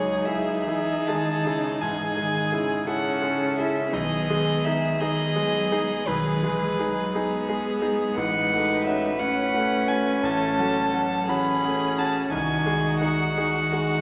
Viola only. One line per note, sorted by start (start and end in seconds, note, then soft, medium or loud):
0.00 2.88 D#4 medium
2.86 3.93 C#4 medium
3.93 4.98 B3 medium
5.01 6.09 B3 medium
6.08 7.15 G#3 medium
7.14 8.19 B3 medium
8.17 9.21 D#4 medium
9.20 11.28 C#4 medium
11.29 12.33 C#4 medium
12.31 13.36 D#4 medium
13.37 14.01 D#4 medium